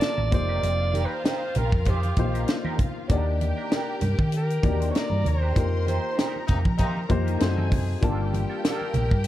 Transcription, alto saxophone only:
Already playing: D5
0.35 D5
1.05 B4
1.13 C5
1.58 A#4
1.90 G4
3.75 A#4
4.37 A#4
4.91 C#5
4.98 D5
5.28 C5
5.59 A#4
5.89 C5
8.67 A#4

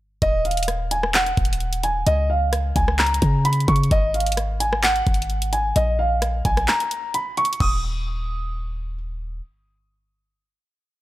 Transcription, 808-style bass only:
0.22 D#1
1.37 D#1
2.07 C#2
2.76 C#2
3.22 C#3
3.68 C#3
3.91 G#1
5.07 G#1
5.76 A#1
6.45 A#1
7.60 D#1

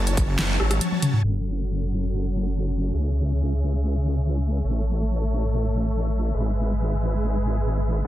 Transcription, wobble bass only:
Already playing: F#1
0.39 F#1
0.60 G#1
1.24 F#1
2.94 C#2
4.64 A1
6.34 G#1

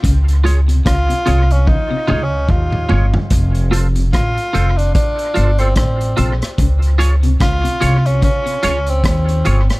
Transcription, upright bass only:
0.05 C#2
0.87 C#2
1.28 C2
2.10 C#2
2.49 D#2
2.92 G1
3.32 F1
4.14 A1
4.55 F1
5.37 G1
5.77 A1
6.19 A#1
6.59 C#2
7.41 C#2
7.82 C2
8.64 C#2
9.04 D#2
9.47 G1

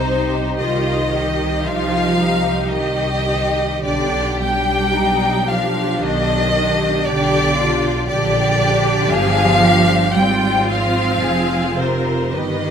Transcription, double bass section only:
Already playing: C2
0.60 C2
1.66 C2
2.74 C2
3.85 B1
4.96 B1
6.01 B1
7.05 B1
8.08 A#1
9.11 G1
10.16 G#1
11.22 F1
12.33 G1

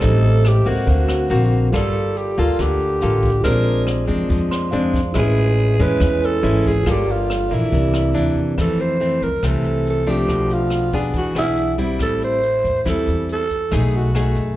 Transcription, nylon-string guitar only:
0.01 A2 G3 C4 D#4
0.66 A#3 C4 F#4
0.87 D3
1.30 A#3 C4 F#4
1.73 G3 A#3 F4 A4
2.38 A#3 F4 A4
2.60 D3
3.02 A#3 F4 A4
3.43 A#2 G#3 C4 D4
4.08 G#3 C4 D4
4.29 F3
4.72 G#3 C4 D4
5.15 A2 G#3 C#4 E4
5.79 G#3 C#4 E4
6.00 E3
6.43 G#3 C#4 E4
6.86 G3 A#3 F4 A4
7.50 E3 A#3 D4
7.73 C3
8.14 E3 A#3 D4
8.58 F2 E3 A3 C4
9.00 E3 A3 C4
9.43 C3 E3 A3 C4
10.07 F3 A3 D4
10.29 B2
10.94 B3 D4 G#4
11.15 E3
11.36 B3 D4 G#4
11.78 G3 C4 E4
12.00 A2
12.85 E3 G3 C4 E4
13.71 B2 A3 D#4 G#4
14.15 A3 D#4 G#4

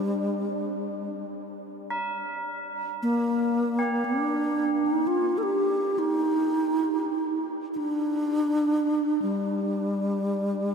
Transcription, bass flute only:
Already playing: G3
3.02 A#3
4.05 D4
4.86 D#4
5.07 F4
5.38 A4
5.43 G4
5.99 D#4
7.74 D4 D#4
9.22 G3

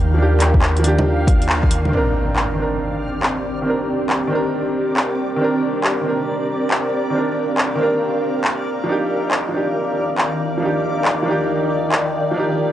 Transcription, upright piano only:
Already playing: F3 D4 G4
0.14 F3 D4
0.22 G4
0.79 F3
0.84 D4 G4
1.89 D#3 C4
1.94 D4 A#4
2.54 D#3 C4
2.59 D4 A#4
3.62 D#3 C4
3.67 D4 A#4
4.27 D#3 C4
4.33 D4 A#4
5.36 D#3 C4
5.42 D4 A#4
6.01 D#3 C4
6.06 D4 A#4
7.10 D#3 C4
7.15 D4 A#4
7.75 D#3 C4
7.81 D4 A#4
8.84 F3 D4
8.89 D#4 G4
9.49 F3 D4
9.54 D#4 G4
10.58 F3 D4
10.63 D#4 G4
11.23 F3 D4
11.28 D#4 G4
12.31 F3 D4
12.37 D#4 G4

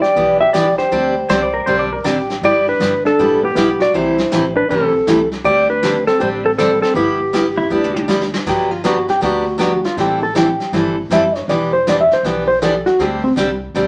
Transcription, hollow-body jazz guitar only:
0.02 G4
0.41 G4
0.54 G4
0.78 G4
2.44 G4
2.67 D4
3.05 D4
3.43 B3
3.55 B3
3.80 F#4
3.94 E4
4.56 D4
4.69 C4
5.45 G4
5.69 D4
6.08 C4
6.20 G4
6.45 C4
6.58 C4
6.81 C4
6.96 B3
8.49 G4
8.71 F4
8.86 F#4
9.10 G4
9.25 F#4
9.61 F#4
9.85 F4
10.00 G4
10.23 A4
10.38 G4
11.13 E5
11.36 C#5
11.49 D5
11.73 C5
11.89 D5
12.01 E5
12.13 C5
12.26 B4
12.48 C5
12.63 A4
12.86 F#4
13.01 G4
13.24 C4

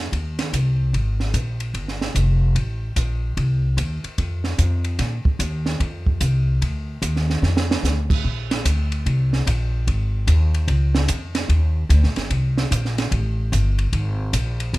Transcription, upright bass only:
Already playing: F2
0.12 D#2
0.53 C2
0.93 G#1
1.34 A#1
1.74 G1
2.15 F1
2.55 A1
2.96 A#1
3.37 C2
3.77 D#2
4.04 muted upright bass stroke
4.18 F2
4.58 F2
4.99 A#2
5.25 muted upright bass stroke
5.39 D#2
5.80 F2
6.21 C2
6.61 D2
7.02 D#2
7.42 F2
7.83 D2
8.24 A#1
8.65 D2
9.06 C2
9.47 A#1
9.87 G#1
10.27 D#2
10.68 C#2
11.09 F2
11.49 D#2
11.89 D2
12.03 A#1
12.17 G1
12.30 C2
12.71 A#1
13.11 A1
13.52 G1
13.93 G#1
14.33 A#1
14.73 G1

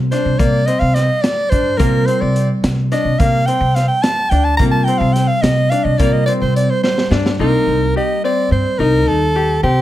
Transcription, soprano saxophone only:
0.12 C5
0.38 D5
0.66 D#5
0.80 F5
0.94 D#5
1.22 D5
1.50 C5
1.78 A#4
2.06 C5
2.21 D5
2.92 D#5
3.19 F5
3.46 G5
3.75 F5
3.88 G5
4.03 A5
4.30 G5
4.44 A5
4.57 A#5
4.71 A5
4.84 G5
4.98 F5
5.13 G5
5.28 F5
5.42 D#5
5.70 F5
5.84 D#5
5.98 D5
6.13 D#5
6.26 D5
6.42 C5
6.56 D5
6.70 C5
6.83 C5
7.40 A#4
7.97 D#5
8.25 D5
8.52 C5
8.79 A#4
9.08 A4
9.64 G4

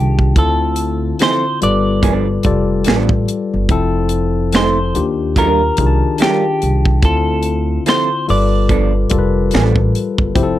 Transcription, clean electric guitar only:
Already playing: G4
0.39 A4
1.23 C5
1.63 D5
4.56 C5
5.39 A#4
6.22 G4
7.05 A4
7.89 C5
8.30 D5

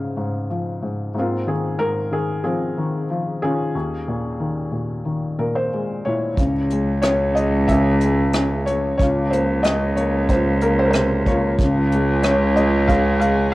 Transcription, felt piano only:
Already playing: C#2 G#2 C#3 G#3 F4 G#4 C5 C#5 F5
0.17 G#2
0.50 F3
0.82 G#2
1.14 G#2 C4
1.19 A#3 F4
1.46 D#3 G#4
1.78 G#2 A#4
2.10 D#3 G#4
2.44 F3 C4 F4 G#4
2.77 D#3
3.10 F3
3.42 D#3 C#4 F4 G#4
3.75 D#2
4.08 A#2
4.40 D#3
4.72 A#2
5.05 D#3
5.39 A#2 A#4
5.55 C5
5.73 G#3
6.05 A#2 E4 C#5
6.38 C#3
6.72 G#3
7.02 C#4 C#5
7.35 G#3 D#5
7.67 C#3 E5
7.72 G#4
8.04 G#3
8.36 C#4
8.66 G#3 C#5
8.97 C#3 C#5
9.02 F4
9.30 A#3 C5
9.63 C#4 D#5
9.96 A#3 C#5
10.30 F4 C5
10.62 A#3 A#4
10.79 C5
10.86 A#4
10.91 C5
10.95 C3
11.27 A#3 F4 C#5
11.61 C#3
11.95 G#3
12.23 C#4 C#5
12.56 G#3 D#5
12.87 C#3 G#4 F5
13.20 G#3 F5

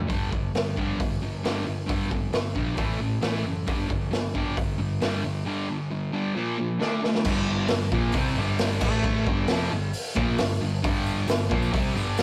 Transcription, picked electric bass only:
0.10 G1
0.33 G1
0.54 G1
1.00 G1
1.21 G1
1.43 G1
1.67 G1
1.90 G1
2.11 G1
2.32 G1
2.56 A#1
2.78 A1
2.99 A1
3.22 A1
3.44 F#1
3.68 G1
3.90 G1
4.12 G1
4.57 G1
4.79 G1
5.03 G1
5.24 G1
7.25 G1
7.70 G1
7.93 A#1
8.14 C2
8.36 G1
8.82 A1
9.27 G1
9.49 F1
9.72 G1
10.16 A#1
10.39 G1
10.62 G1
10.84 G1
11.27 G1
11.51 A#1
11.74 C2
11.95 G1

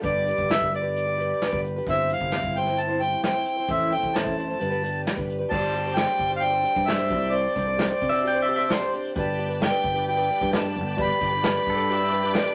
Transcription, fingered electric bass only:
0.04 G1
0.38 G1
0.62 G1
1.53 G1
1.87 G1
2.20 G1
2.44 G1
3.69 A1
4.04 A1
4.27 A1
4.61 G1
5.18 G1
5.52 G1
6.19 G1
6.76 G2
7.10 C2
7.57 C2
8.02 C3
9.16 G1
9.84 G1
10.42 G2
10.76 G1
11.21 G1
11.67 G2

